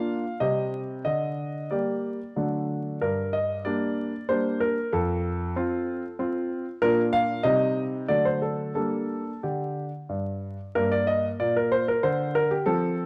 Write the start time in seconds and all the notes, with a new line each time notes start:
Already playing: A#3 D4 F4 F5
0.40 C3 G3 C4 G4 D#5
1.05 D3 D#5
1.71 G3 A#3 G4 D5
2.36 D3 F#3 A3 D4
3.01 G2 A#4
3.33 D#5
3.65 G3 A#3 D4 D5
4.29 G3 A#3 D4 C5
4.60 A#4
4.92 F2 A4
5.56 C4 F4
6.19 C4 F4
6.82 A#2 A#3 D4 F4 A#4
7.13 F5
7.43 C3 G3 C4 D#4 D#5
8.08 D3 F#3 A3 D4 D5
8.25 C5
8.42 A4
8.75 G3 A#3 D4 A4
9.43 D3 G4
10.09 G2
10.75 G2 A#3 A#4
10.92 D5
11.07 D#5
11.40 A#2 D5
11.57 A#4
11.72 C5
11.88 A#4
12.03 D3 C5
12.35 A#4
12.51 G4
12.66 F3 C4 A4